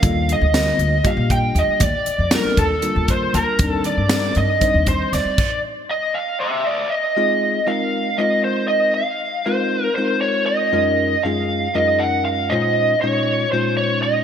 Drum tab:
CC |-------|-------|-------|x------|
HH |xxxxxxx|xxxxxxx|xxxxxxx|-------|
SD |--o----|--o----|--o---o|-------|
BD |o---oo-|o--o-o-|o---oo-|o------|

CC |-------|-------|-------|-------|
HH |-------|-------|-------|-------|
SD |-------|-------|-------|-------|
BD |-------|-------|-------|-------|